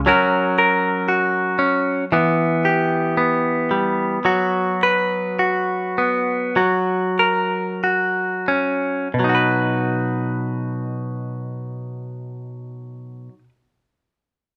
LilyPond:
\new Staff \with { instrumentName = "Clean electric guitar" } { \time 4/4 \key b \major \tempo 4 = 49 << { <cis' fis' ais'>8 ais'8 fis'4 b8 g'8 b4 | fis'8 b'8 fis'4 fis'8 ais'8 fis'4 | <fis dis' fis' b'>1 | } \\ { fis4. cis'8 e4. g8 | fis4. b8 fis4. cis'8 | b,1 | } >> }